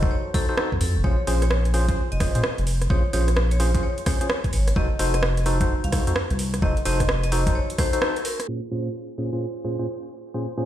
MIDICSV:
0, 0, Header, 1, 5, 480
1, 0, Start_track
1, 0, Key_signature, -5, "minor"
1, 0, Tempo, 465116
1, 1073, Time_signature, 4, 2, 24, 8
1, 10994, End_track
2, 0, Start_track
2, 0, Title_t, "Vibraphone"
2, 0, Program_c, 0, 11
2, 112, Note_on_c, 0, 73, 87
2, 297, Note_off_c, 0, 73, 0
2, 354, Note_on_c, 0, 69, 89
2, 704, Note_off_c, 0, 69, 0
2, 835, Note_on_c, 0, 69, 86
2, 1018, Note_off_c, 0, 69, 0
2, 1074, Note_on_c, 0, 73, 97
2, 1320, Note_off_c, 0, 73, 0
2, 1466, Note_on_c, 0, 73, 94
2, 1710, Note_off_c, 0, 73, 0
2, 2186, Note_on_c, 0, 75, 92
2, 2489, Note_off_c, 0, 75, 0
2, 2995, Note_on_c, 0, 73, 89
2, 3178, Note_off_c, 0, 73, 0
2, 3233, Note_on_c, 0, 73, 91
2, 3480, Note_off_c, 0, 73, 0
2, 3626, Note_on_c, 0, 73, 93
2, 3870, Note_off_c, 0, 73, 0
2, 3954, Note_on_c, 0, 73, 86
2, 4138, Note_off_c, 0, 73, 0
2, 4194, Note_on_c, 0, 73, 98
2, 4544, Note_off_c, 0, 73, 0
2, 4675, Note_on_c, 0, 73, 88
2, 4858, Note_off_c, 0, 73, 0
2, 4913, Note_on_c, 0, 75, 105
2, 5160, Note_off_c, 0, 75, 0
2, 5307, Note_on_c, 0, 75, 96
2, 5550, Note_off_c, 0, 75, 0
2, 6027, Note_on_c, 0, 77, 90
2, 6330, Note_off_c, 0, 77, 0
2, 6835, Note_on_c, 0, 75, 91
2, 7018, Note_off_c, 0, 75, 0
2, 7074, Note_on_c, 0, 75, 90
2, 7321, Note_off_c, 0, 75, 0
2, 7467, Note_on_c, 0, 75, 100
2, 7710, Note_off_c, 0, 75, 0
2, 7794, Note_on_c, 0, 73, 87
2, 7978, Note_off_c, 0, 73, 0
2, 8034, Note_on_c, 0, 72, 94
2, 8384, Note_off_c, 0, 72, 0
2, 8513, Note_on_c, 0, 70, 88
2, 8697, Note_off_c, 0, 70, 0
2, 10994, End_track
3, 0, Start_track
3, 0, Title_t, "Synth stab"
3, 0, Program_c, 1, 62
3, 25, Note_on_c, 1, 63, 90
3, 25, Note_on_c, 1, 66, 84
3, 25, Note_on_c, 1, 69, 85
3, 25, Note_on_c, 1, 72, 104
3, 159, Note_off_c, 1, 63, 0
3, 159, Note_off_c, 1, 66, 0
3, 159, Note_off_c, 1, 69, 0
3, 159, Note_off_c, 1, 72, 0
3, 353, Note_on_c, 1, 63, 81
3, 353, Note_on_c, 1, 66, 77
3, 353, Note_on_c, 1, 69, 78
3, 353, Note_on_c, 1, 72, 91
3, 477, Note_off_c, 1, 63, 0
3, 477, Note_off_c, 1, 66, 0
3, 477, Note_off_c, 1, 69, 0
3, 477, Note_off_c, 1, 72, 0
3, 505, Note_on_c, 1, 63, 95
3, 505, Note_on_c, 1, 66, 89
3, 505, Note_on_c, 1, 69, 91
3, 505, Note_on_c, 1, 72, 107
3, 572, Note_off_c, 1, 63, 0
3, 572, Note_off_c, 1, 66, 0
3, 572, Note_off_c, 1, 69, 0
3, 572, Note_off_c, 1, 72, 0
3, 594, Note_on_c, 1, 63, 88
3, 594, Note_on_c, 1, 66, 79
3, 594, Note_on_c, 1, 69, 80
3, 594, Note_on_c, 1, 72, 94
3, 717, Note_off_c, 1, 63, 0
3, 717, Note_off_c, 1, 66, 0
3, 717, Note_off_c, 1, 69, 0
3, 717, Note_off_c, 1, 72, 0
3, 1074, Note_on_c, 1, 61, 81
3, 1074, Note_on_c, 1, 65, 73
3, 1074, Note_on_c, 1, 68, 73
3, 1074, Note_on_c, 1, 72, 88
3, 1197, Note_off_c, 1, 61, 0
3, 1197, Note_off_c, 1, 72, 0
3, 1198, Note_off_c, 1, 65, 0
3, 1198, Note_off_c, 1, 68, 0
3, 1314, Note_on_c, 1, 61, 100
3, 1314, Note_on_c, 1, 65, 88
3, 1314, Note_on_c, 1, 68, 92
3, 1314, Note_on_c, 1, 72, 111
3, 1492, Note_off_c, 1, 61, 0
3, 1492, Note_off_c, 1, 65, 0
3, 1492, Note_off_c, 1, 68, 0
3, 1492, Note_off_c, 1, 72, 0
3, 1793, Note_on_c, 1, 72, 103
3, 1794, Note_on_c, 1, 61, 96
3, 1794, Note_on_c, 1, 65, 91
3, 1794, Note_on_c, 1, 68, 88
3, 1917, Note_off_c, 1, 61, 0
3, 1917, Note_off_c, 1, 65, 0
3, 1917, Note_off_c, 1, 68, 0
3, 1917, Note_off_c, 1, 72, 0
3, 1946, Note_on_c, 1, 61, 92
3, 1946, Note_on_c, 1, 65, 85
3, 1946, Note_on_c, 1, 68, 83
3, 1946, Note_on_c, 1, 72, 104
3, 2080, Note_off_c, 1, 61, 0
3, 2080, Note_off_c, 1, 65, 0
3, 2080, Note_off_c, 1, 68, 0
3, 2080, Note_off_c, 1, 72, 0
3, 2274, Note_on_c, 1, 61, 86
3, 2274, Note_on_c, 1, 65, 78
3, 2274, Note_on_c, 1, 68, 75
3, 2274, Note_on_c, 1, 72, 89
3, 2398, Note_off_c, 1, 61, 0
3, 2398, Note_off_c, 1, 65, 0
3, 2398, Note_off_c, 1, 68, 0
3, 2398, Note_off_c, 1, 72, 0
3, 2426, Note_on_c, 1, 61, 87
3, 2426, Note_on_c, 1, 68, 80
3, 2426, Note_on_c, 1, 72, 97
3, 2427, Note_on_c, 1, 65, 83
3, 2498, Note_off_c, 1, 61, 0
3, 2498, Note_off_c, 1, 65, 0
3, 2498, Note_off_c, 1, 68, 0
3, 2498, Note_off_c, 1, 72, 0
3, 2993, Note_on_c, 1, 61, 78
3, 2993, Note_on_c, 1, 65, 74
3, 2993, Note_on_c, 1, 68, 72
3, 2993, Note_on_c, 1, 72, 89
3, 3117, Note_off_c, 1, 61, 0
3, 3117, Note_off_c, 1, 65, 0
3, 3117, Note_off_c, 1, 68, 0
3, 3117, Note_off_c, 1, 72, 0
3, 3233, Note_on_c, 1, 61, 97
3, 3233, Note_on_c, 1, 65, 90
3, 3233, Note_on_c, 1, 68, 92
3, 3233, Note_on_c, 1, 72, 103
3, 3412, Note_off_c, 1, 61, 0
3, 3412, Note_off_c, 1, 65, 0
3, 3412, Note_off_c, 1, 68, 0
3, 3412, Note_off_c, 1, 72, 0
3, 3713, Note_on_c, 1, 61, 96
3, 3713, Note_on_c, 1, 65, 90
3, 3713, Note_on_c, 1, 68, 88
3, 3713, Note_on_c, 1, 72, 108
3, 3837, Note_off_c, 1, 61, 0
3, 3837, Note_off_c, 1, 65, 0
3, 3837, Note_off_c, 1, 68, 0
3, 3837, Note_off_c, 1, 72, 0
3, 3865, Note_on_c, 1, 61, 93
3, 3865, Note_on_c, 1, 65, 86
3, 3865, Note_on_c, 1, 68, 85
3, 3865, Note_on_c, 1, 72, 100
3, 3999, Note_off_c, 1, 65, 0
3, 3999, Note_off_c, 1, 68, 0
3, 3999, Note_off_c, 1, 72, 0
3, 4000, Note_off_c, 1, 61, 0
3, 4193, Note_on_c, 1, 61, 85
3, 4193, Note_on_c, 1, 65, 75
3, 4193, Note_on_c, 1, 68, 78
3, 4193, Note_on_c, 1, 72, 97
3, 4317, Note_off_c, 1, 61, 0
3, 4317, Note_off_c, 1, 65, 0
3, 4317, Note_off_c, 1, 68, 0
3, 4317, Note_off_c, 1, 72, 0
3, 4345, Note_on_c, 1, 61, 93
3, 4345, Note_on_c, 1, 65, 79
3, 4345, Note_on_c, 1, 68, 81
3, 4345, Note_on_c, 1, 72, 98
3, 4417, Note_off_c, 1, 61, 0
3, 4417, Note_off_c, 1, 65, 0
3, 4417, Note_off_c, 1, 68, 0
3, 4417, Note_off_c, 1, 72, 0
3, 4913, Note_on_c, 1, 63, 76
3, 4913, Note_on_c, 1, 66, 74
3, 4913, Note_on_c, 1, 69, 74
3, 4914, Note_on_c, 1, 72, 91
3, 5037, Note_off_c, 1, 63, 0
3, 5037, Note_off_c, 1, 66, 0
3, 5037, Note_off_c, 1, 69, 0
3, 5037, Note_off_c, 1, 72, 0
3, 5154, Note_on_c, 1, 63, 101
3, 5154, Note_on_c, 1, 66, 89
3, 5154, Note_on_c, 1, 69, 87
3, 5154, Note_on_c, 1, 72, 111
3, 5332, Note_off_c, 1, 66, 0
3, 5332, Note_off_c, 1, 69, 0
3, 5332, Note_off_c, 1, 72, 0
3, 5333, Note_off_c, 1, 63, 0
3, 5634, Note_on_c, 1, 63, 97
3, 5634, Note_on_c, 1, 66, 92
3, 5634, Note_on_c, 1, 69, 90
3, 5634, Note_on_c, 1, 72, 107
3, 5757, Note_off_c, 1, 63, 0
3, 5757, Note_off_c, 1, 69, 0
3, 5758, Note_off_c, 1, 66, 0
3, 5758, Note_off_c, 1, 72, 0
3, 5786, Note_on_c, 1, 63, 92
3, 5786, Note_on_c, 1, 66, 86
3, 5786, Note_on_c, 1, 69, 89
3, 5786, Note_on_c, 1, 72, 104
3, 5920, Note_off_c, 1, 63, 0
3, 5920, Note_off_c, 1, 66, 0
3, 5920, Note_off_c, 1, 69, 0
3, 5920, Note_off_c, 1, 72, 0
3, 6114, Note_on_c, 1, 63, 86
3, 6114, Note_on_c, 1, 66, 80
3, 6114, Note_on_c, 1, 69, 77
3, 6114, Note_on_c, 1, 72, 96
3, 6237, Note_off_c, 1, 72, 0
3, 6238, Note_off_c, 1, 63, 0
3, 6238, Note_off_c, 1, 66, 0
3, 6238, Note_off_c, 1, 69, 0
3, 6266, Note_on_c, 1, 63, 86
3, 6266, Note_on_c, 1, 66, 85
3, 6266, Note_on_c, 1, 69, 83
3, 6266, Note_on_c, 1, 72, 101
3, 6338, Note_off_c, 1, 63, 0
3, 6338, Note_off_c, 1, 66, 0
3, 6338, Note_off_c, 1, 69, 0
3, 6338, Note_off_c, 1, 72, 0
3, 6834, Note_on_c, 1, 66, 73
3, 6834, Note_on_c, 1, 69, 76
3, 6834, Note_on_c, 1, 72, 84
3, 6835, Note_on_c, 1, 63, 79
3, 6958, Note_off_c, 1, 63, 0
3, 6958, Note_off_c, 1, 66, 0
3, 6958, Note_off_c, 1, 69, 0
3, 6958, Note_off_c, 1, 72, 0
3, 7074, Note_on_c, 1, 63, 99
3, 7074, Note_on_c, 1, 66, 90
3, 7074, Note_on_c, 1, 69, 88
3, 7074, Note_on_c, 1, 72, 110
3, 7252, Note_off_c, 1, 63, 0
3, 7252, Note_off_c, 1, 72, 0
3, 7253, Note_off_c, 1, 66, 0
3, 7253, Note_off_c, 1, 69, 0
3, 7554, Note_on_c, 1, 63, 97
3, 7554, Note_on_c, 1, 66, 88
3, 7554, Note_on_c, 1, 69, 91
3, 7554, Note_on_c, 1, 72, 107
3, 7677, Note_off_c, 1, 63, 0
3, 7677, Note_off_c, 1, 69, 0
3, 7677, Note_off_c, 1, 72, 0
3, 7678, Note_off_c, 1, 66, 0
3, 7706, Note_on_c, 1, 63, 96
3, 7706, Note_on_c, 1, 66, 83
3, 7706, Note_on_c, 1, 69, 86
3, 7706, Note_on_c, 1, 72, 101
3, 7840, Note_off_c, 1, 63, 0
3, 7840, Note_off_c, 1, 66, 0
3, 7840, Note_off_c, 1, 69, 0
3, 7840, Note_off_c, 1, 72, 0
3, 8033, Note_on_c, 1, 63, 85
3, 8033, Note_on_c, 1, 66, 76
3, 8034, Note_on_c, 1, 69, 76
3, 8034, Note_on_c, 1, 72, 94
3, 8157, Note_off_c, 1, 63, 0
3, 8157, Note_off_c, 1, 66, 0
3, 8157, Note_off_c, 1, 69, 0
3, 8157, Note_off_c, 1, 72, 0
3, 8185, Note_on_c, 1, 66, 93
3, 8185, Note_on_c, 1, 72, 113
3, 8186, Note_on_c, 1, 63, 101
3, 8186, Note_on_c, 1, 69, 96
3, 8252, Note_off_c, 1, 63, 0
3, 8252, Note_off_c, 1, 66, 0
3, 8252, Note_off_c, 1, 72, 0
3, 8253, Note_off_c, 1, 69, 0
3, 8274, Note_on_c, 1, 63, 89
3, 8274, Note_on_c, 1, 66, 80
3, 8274, Note_on_c, 1, 69, 83
3, 8274, Note_on_c, 1, 72, 100
3, 8397, Note_off_c, 1, 63, 0
3, 8397, Note_off_c, 1, 66, 0
3, 8397, Note_off_c, 1, 69, 0
3, 8397, Note_off_c, 1, 72, 0
3, 8753, Note_on_c, 1, 65, 72
3, 8753, Note_on_c, 1, 72, 86
3, 8754, Note_on_c, 1, 46, 78
3, 8754, Note_on_c, 1, 61, 69
3, 8754, Note_on_c, 1, 68, 71
3, 8877, Note_off_c, 1, 46, 0
3, 8877, Note_off_c, 1, 65, 0
3, 8877, Note_off_c, 1, 68, 0
3, 8877, Note_off_c, 1, 72, 0
3, 8878, Note_off_c, 1, 61, 0
3, 8994, Note_on_c, 1, 46, 94
3, 8994, Note_on_c, 1, 61, 89
3, 8994, Note_on_c, 1, 65, 85
3, 8994, Note_on_c, 1, 68, 89
3, 8994, Note_on_c, 1, 72, 108
3, 9172, Note_off_c, 1, 46, 0
3, 9173, Note_off_c, 1, 61, 0
3, 9173, Note_off_c, 1, 65, 0
3, 9173, Note_off_c, 1, 68, 0
3, 9173, Note_off_c, 1, 72, 0
3, 9473, Note_on_c, 1, 65, 88
3, 9473, Note_on_c, 1, 68, 85
3, 9473, Note_on_c, 1, 72, 106
3, 9474, Note_on_c, 1, 46, 95
3, 9474, Note_on_c, 1, 61, 88
3, 9597, Note_off_c, 1, 46, 0
3, 9597, Note_off_c, 1, 65, 0
3, 9597, Note_off_c, 1, 68, 0
3, 9597, Note_off_c, 1, 72, 0
3, 9598, Note_off_c, 1, 61, 0
3, 9626, Note_on_c, 1, 46, 86
3, 9626, Note_on_c, 1, 61, 83
3, 9626, Note_on_c, 1, 65, 83
3, 9626, Note_on_c, 1, 68, 82
3, 9626, Note_on_c, 1, 72, 98
3, 9760, Note_off_c, 1, 46, 0
3, 9760, Note_off_c, 1, 61, 0
3, 9760, Note_off_c, 1, 65, 0
3, 9760, Note_off_c, 1, 68, 0
3, 9760, Note_off_c, 1, 72, 0
3, 9954, Note_on_c, 1, 46, 82
3, 9954, Note_on_c, 1, 61, 75
3, 9954, Note_on_c, 1, 65, 75
3, 9954, Note_on_c, 1, 68, 74
3, 9954, Note_on_c, 1, 72, 93
3, 10077, Note_off_c, 1, 46, 0
3, 10077, Note_off_c, 1, 61, 0
3, 10077, Note_off_c, 1, 65, 0
3, 10077, Note_off_c, 1, 72, 0
3, 10078, Note_off_c, 1, 68, 0
3, 10105, Note_on_c, 1, 61, 79
3, 10105, Note_on_c, 1, 72, 98
3, 10106, Note_on_c, 1, 46, 83
3, 10106, Note_on_c, 1, 65, 78
3, 10106, Note_on_c, 1, 68, 81
3, 10177, Note_off_c, 1, 46, 0
3, 10177, Note_off_c, 1, 61, 0
3, 10177, Note_off_c, 1, 65, 0
3, 10177, Note_off_c, 1, 68, 0
3, 10177, Note_off_c, 1, 72, 0
3, 10674, Note_on_c, 1, 46, 78
3, 10674, Note_on_c, 1, 61, 70
3, 10674, Note_on_c, 1, 65, 70
3, 10674, Note_on_c, 1, 68, 72
3, 10674, Note_on_c, 1, 72, 89
3, 10798, Note_off_c, 1, 46, 0
3, 10798, Note_off_c, 1, 61, 0
3, 10798, Note_off_c, 1, 65, 0
3, 10798, Note_off_c, 1, 68, 0
3, 10798, Note_off_c, 1, 72, 0
3, 10914, Note_on_c, 1, 46, 99
3, 10914, Note_on_c, 1, 61, 91
3, 10914, Note_on_c, 1, 65, 87
3, 10914, Note_on_c, 1, 68, 84
3, 10914, Note_on_c, 1, 72, 107
3, 10994, Note_off_c, 1, 46, 0
3, 10994, Note_off_c, 1, 61, 0
3, 10994, Note_off_c, 1, 65, 0
3, 10994, Note_off_c, 1, 68, 0
3, 10994, Note_off_c, 1, 72, 0
3, 10994, End_track
4, 0, Start_track
4, 0, Title_t, "Sub bass"
4, 0, Program_c, 2, 38
4, 746, Note_on_c, 2, 41, 93
4, 814, Note_off_c, 2, 41, 0
4, 834, Note_on_c, 2, 41, 99
4, 987, Note_on_c, 2, 27, 84
4, 1002, Note_off_c, 2, 41, 0
4, 1055, Note_off_c, 2, 27, 0
4, 1074, Note_on_c, 2, 34, 102
4, 1192, Note_off_c, 2, 34, 0
4, 1315, Note_on_c, 2, 34, 94
4, 2003, Note_off_c, 2, 34, 0
4, 2187, Note_on_c, 2, 29, 101
4, 2359, Note_off_c, 2, 29, 0
4, 2428, Note_on_c, 2, 46, 85
4, 2495, Note_off_c, 2, 46, 0
4, 2668, Note_on_c, 2, 29, 103
4, 2963, Note_off_c, 2, 29, 0
4, 2995, Note_on_c, 2, 34, 102
4, 3113, Note_off_c, 2, 34, 0
4, 3235, Note_on_c, 2, 34, 92
4, 3923, Note_off_c, 2, 34, 0
4, 4674, Note_on_c, 2, 32, 100
4, 4875, Note_off_c, 2, 32, 0
4, 4914, Note_on_c, 2, 29, 101
4, 5032, Note_off_c, 2, 29, 0
4, 5155, Note_on_c, 2, 29, 92
4, 5843, Note_off_c, 2, 29, 0
4, 6026, Note_on_c, 2, 36, 97
4, 6199, Note_off_c, 2, 36, 0
4, 6266, Note_on_c, 2, 41, 84
4, 6335, Note_off_c, 2, 41, 0
4, 6507, Note_on_c, 2, 36, 100
4, 6803, Note_off_c, 2, 36, 0
4, 6835, Note_on_c, 2, 29, 107
4, 6953, Note_off_c, 2, 29, 0
4, 7075, Note_on_c, 2, 29, 94
4, 7763, Note_off_c, 2, 29, 0
4, 10994, End_track
5, 0, Start_track
5, 0, Title_t, "Drums"
5, 26, Note_on_c, 9, 36, 109
5, 129, Note_off_c, 9, 36, 0
5, 353, Note_on_c, 9, 36, 111
5, 353, Note_on_c, 9, 46, 102
5, 457, Note_off_c, 9, 36, 0
5, 457, Note_off_c, 9, 46, 0
5, 593, Note_on_c, 9, 37, 117
5, 696, Note_off_c, 9, 37, 0
5, 746, Note_on_c, 9, 36, 63
5, 833, Note_on_c, 9, 46, 105
5, 849, Note_off_c, 9, 36, 0
5, 937, Note_off_c, 9, 46, 0
5, 1074, Note_on_c, 9, 36, 116
5, 1177, Note_off_c, 9, 36, 0
5, 1314, Note_on_c, 9, 46, 99
5, 1417, Note_off_c, 9, 46, 0
5, 1466, Note_on_c, 9, 37, 48
5, 1466, Note_on_c, 9, 42, 66
5, 1554, Note_off_c, 9, 37, 0
5, 1554, Note_on_c, 9, 37, 116
5, 1569, Note_off_c, 9, 42, 0
5, 1657, Note_off_c, 9, 37, 0
5, 1706, Note_on_c, 9, 42, 51
5, 1794, Note_on_c, 9, 46, 98
5, 1809, Note_off_c, 9, 42, 0
5, 1897, Note_off_c, 9, 46, 0
5, 1946, Note_on_c, 9, 36, 102
5, 1946, Note_on_c, 9, 42, 63
5, 2049, Note_off_c, 9, 36, 0
5, 2049, Note_off_c, 9, 42, 0
5, 2186, Note_on_c, 9, 42, 53
5, 2274, Note_on_c, 9, 36, 106
5, 2274, Note_on_c, 9, 37, 65
5, 2274, Note_on_c, 9, 46, 104
5, 2289, Note_off_c, 9, 42, 0
5, 2377, Note_off_c, 9, 36, 0
5, 2377, Note_off_c, 9, 37, 0
5, 2377, Note_off_c, 9, 46, 0
5, 2426, Note_on_c, 9, 42, 68
5, 2513, Note_on_c, 9, 37, 116
5, 2529, Note_off_c, 9, 42, 0
5, 2616, Note_off_c, 9, 37, 0
5, 2666, Note_on_c, 9, 42, 39
5, 2753, Note_on_c, 9, 46, 100
5, 2769, Note_off_c, 9, 42, 0
5, 2856, Note_off_c, 9, 46, 0
5, 2905, Note_on_c, 9, 37, 48
5, 2905, Note_on_c, 9, 42, 65
5, 2994, Note_on_c, 9, 36, 112
5, 3008, Note_off_c, 9, 37, 0
5, 3008, Note_off_c, 9, 42, 0
5, 3097, Note_off_c, 9, 36, 0
5, 3233, Note_on_c, 9, 46, 105
5, 3336, Note_off_c, 9, 46, 0
5, 3385, Note_on_c, 9, 37, 48
5, 3385, Note_on_c, 9, 42, 65
5, 3473, Note_off_c, 9, 37, 0
5, 3473, Note_on_c, 9, 37, 113
5, 3488, Note_off_c, 9, 42, 0
5, 3576, Note_off_c, 9, 37, 0
5, 3625, Note_on_c, 9, 42, 56
5, 3713, Note_on_c, 9, 46, 105
5, 3728, Note_off_c, 9, 42, 0
5, 3816, Note_off_c, 9, 46, 0
5, 3865, Note_on_c, 9, 42, 68
5, 3866, Note_on_c, 9, 36, 98
5, 3969, Note_off_c, 9, 36, 0
5, 3969, Note_off_c, 9, 42, 0
5, 4105, Note_on_c, 9, 42, 55
5, 4193, Note_on_c, 9, 37, 65
5, 4193, Note_on_c, 9, 46, 102
5, 4194, Note_on_c, 9, 36, 102
5, 4208, Note_off_c, 9, 42, 0
5, 4296, Note_off_c, 9, 37, 0
5, 4296, Note_off_c, 9, 46, 0
5, 4297, Note_off_c, 9, 36, 0
5, 4345, Note_on_c, 9, 42, 69
5, 4433, Note_on_c, 9, 37, 114
5, 4448, Note_off_c, 9, 42, 0
5, 4536, Note_off_c, 9, 37, 0
5, 4585, Note_on_c, 9, 42, 39
5, 4586, Note_on_c, 9, 36, 61
5, 4673, Note_on_c, 9, 46, 105
5, 4688, Note_off_c, 9, 42, 0
5, 4689, Note_off_c, 9, 36, 0
5, 4776, Note_off_c, 9, 46, 0
5, 4825, Note_on_c, 9, 37, 49
5, 4825, Note_on_c, 9, 42, 67
5, 4914, Note_on_c, 9, 36, 112
5, 4929, Note_off_c, 9, 37, 0
5, 4929, Note_off_c, 9, 42, 0
5, 5017, Note_off_c, 9, 36, 0
5, 5153, Note_on_c, 9, 46, 110
5, 5256, Note_off_c, 9, 46, 0
5, 5305, Note_on_c, 9, 37, 49
5, 5305, Note_on_c, 9, 42, 67
5, 5393, Note_off_c, 9, 37, 0
5, 5393, Note_on_c, 9, 37, 114
5, 5409, Note_off_c, 9, 42, 0
5, 5496, Note_off_c, 9, 37, 0
5, 5546, Note_on_c, 9, 42, 55
5, 5633, Note_on_c, 9, 46, 107
5, 5649, Note_off_c, 9, 42, 0
5, 5736, Note_off_c, 9, 46, 0
5, 5786, Note_on_c, 9, 36, 99
5, 5786, Note_on_c, 9, 42, 68
5, 5889, Note_off_c, 9, 36, 0
5, 5889, Note_off_c, 9, 42, 0
5, 6026, Note_on_c, 9, 42, 59
5, 6114, Note_on_c, 9, 36, 99
5, 6114, Note_on_c, 9, 37, 67
5, 6114, Note_on_c, 9, 46, 112
5, 6130, Note_off_c, 9, 42, 0
5, 6217, Note_off_c, 9, 36, 0
5, 6217, Note_off_c, 9, 37, 0
5, 6217, Note_off_c, 9, 46, 0
5, 6266, Note_on_c, 9, 42, 71
5, 6354, Note_on_c, 9, 37, 107
5, 6370, Note_off_c, 9, 42, 0
5, 6457, Note_off_c, 9, 37, 0
5, 6506, Note_on_c, 9, 42, 40
5, 6594, Note_on_c, 9, 46, 112
5, 6609, Note_off_c, 9, 42, 0
5, 6697, Note_off_c, 9, 46, 0
5, 6746, Note_on_c, 9, 37, 51
5, 6746, Note_on_c, 9, 42, 68
5, 6834, Note_on_c, 9, 36, 120
5, 6849, Note_off_c, 9, 37, 0
5, 6849, Note_off_c, 9, 42, 0
5, 6937, Note_off_c, 9, 36, 0
5, 6986, Note_on_c, 9, 42, 38
5, 7074, Note_on_c, 9, 46, 114
5, 7089, Note_off_c, 9, 42, 0
5, 7177, Note_off_c, 9, 46, 0
5, 7226, Note_on_c, 9, 36, 59
5, 7226, Note_on_c, 9, 37, 51
5, 7226, Note_on_c, 9, 42, 68
5, 7313, Note_off_c, 9, 37, 0
5, 7313, Note_on_c, 9, 37, 117
5, 7329, Note_off_c, 9, 36, 0
5, 7329, Note_off_c, 9, 42, 0
5, 7417, Note_off_c, 9, 37, 0
5, 7466, Note_on_c, 9, 42, 55
5, 7554, Note_on_c, 9, 46, 109
5, 7569, Note_off_c, 9, 42, 0
5, 7657, Note_off_c, 9, 46, 0
5, 7706, Note_on_c, 9, 36, 99
5, 7706, Note_on_c, 9, 42, 66
5, 7809, Note_off_c, 9, 36, 0
5, 7810, Note_off_c, 9, 42, 0
5, 7946, Note_on_c, 9, 42, 54
5, 8034, Note_on_c, 9, 36, 99
5, 8034, Note_on_c, 9, 37, 70
5, 8034, Note_on_c, 9, 46, 109
5, 8049, Note_off_c, 9, 42, 0
5, 8137, Note_off_c, 9, 36, 0
5, 8137, Note_off_c, 9, 37, 0
5, 8137, Note_off_c, 9, 46, 0
5, 8186, Note_on_c, 9, 42, 69
5, 8273, Note_on_c, 9, 37, 114
5, 8289, Note_off_c, 9, 42, 0
5, 8376, Note_off_c, 9, 37, 0
5, 8425, Note_on_c, 9, 42, 40
5, 8513, Note_on_c, 9, 46, 112
5, 8528, Note_off_c, 9, 42, 0
5, 8616, Note_off_c, 9, 46, 0
5, 8665, Note_on_c, 9, 37, 55
5, 8665, Note_on_c, 9, 42, 67
5, 8768, Note_off_c, 9, 37, 0
5, 8768, Note_off_c, 9, 42, 0
5, 10994, End_track
0, 0, End_of_file